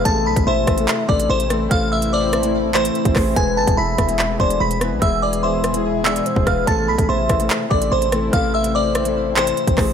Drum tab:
HH |x--x--xx---x-xx-|x--x--xx---xxxo-|x--x--xx---x-xx-|x--x--xx---xx-x-|
CP |--------x-------|----------x---x-|--------x-------|----------x-----|
SD |------r-------r-|------r-------r-|------r-------r-|------r-------r-|
BD |o--o--o---o-----|o------------oo-|o--o--o---o-----|o------------oo-|

HH |x--x--xx---x-xx-|x--x--xx---xxxo-|
CP |--------x-------|----------x---x-|
SD |------r-------r-|------r-------r-|
BD |o--o--o---o-----|o------------oo-|